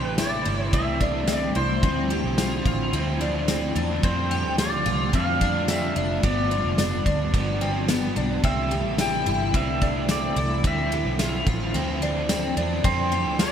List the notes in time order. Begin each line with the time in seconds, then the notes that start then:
Already playing: C3 D3 E3 G3 A3 C4 D4 E4 G4 C5
0.04 A1 B4
0.16 C3 E3 A3 E4 D5, snare, ride, tambourine
0.21 D4
0.45 G1 E4, ride
0.63 C5
0.71 C2 C3 E3 C4 E5, kick, ride
0.76 A3 D4
1.00 D4, kick, ride
1.27 C4, snare, ride, tambourine
1.35 D5
1.55 C2 E4 C5, ride
1.82 D2 D3 F3 A3 C4 E4, kick, ride
2.10 G4, ride
2.24 B1
2.36 D3 F3 C4 F4, snare, ride, tambourine
2.41 E4
2.65 A1 F4, kick, ride
2.92 D2 D3 F3 C4 E4, ride
3.21 D4, ride
3.48 C4, snare, ride, tambourine
3.74 E2 C4 D4 E4, ride
3.79 F3
4.01 F2 D3 F3 G3 C4 D4 F4 C5, kick, ride
4.07 F4 A4
4.31 G4, ride
4.45 D2
4.58 F4 D5, snare, ride, tambourine
4.86 C2 F4, ride
5.11 F2 F3 G3 C4 D4, kick, ride
5.15 F4 A4 F5
5.41 D4, kick, ride
5.68 C4 E5, snare, ride, tambourine
5.96 F1 D4, ride
6.21 G1 G2 D3 F3 G3 B3 G4 D5, kick, ride
6.27 B3 D4
6.51 F4, ride
6.65 F1
6.78 D4, snare, ride, tambourine
7.06 D2 D4, kick, ride
7.31 G1 G2 D3 B3, kick, ride
7.35 F3 B3 D4
7.61 C4, ride
7.88 B3, snare, ride, tambourine
8.16 B1 D4, ride
8.42 C2 C3 E3 A3 C4 D4 E4 A4 E5, kick, ride
8.71 G4, ride
8.85 A1
8.98 C3 E3 A3 E4 G5, snare, ride, tambourine
9.02 D4
9.26 G1 E4, ride
9.52 C2 C3 E3 C4 E5, kick, ride
9.57 A3 D4
9.81 D4, kick, ride
10.09 C4 D5, snare, ride, tambourine
10.36 C2 E4, ride
10.64 D2 D3 F3 C4 E4 E5, kick, ride
10.92 G4, ride
11.05 B1
11.18 D3 F3 C4 F4, snare, ride, tambourine
11.23 E4
11.46 A1 F4, kick, ride
11.73 D2 D3 F3 C4 E4, ride
12.02 D4, ride
12.29 C4, snare, ride, tambourine
12.56 E2 C4 D4 E4, ride
12.60 F3
12.83 F2 F3 G3 C4 D4 F4 A4 C5, kick, ride
13.12 G4, ride
13.26 D2
13.38 G3 D4 F4 D5, snare, ride, tambourine
13.43 A4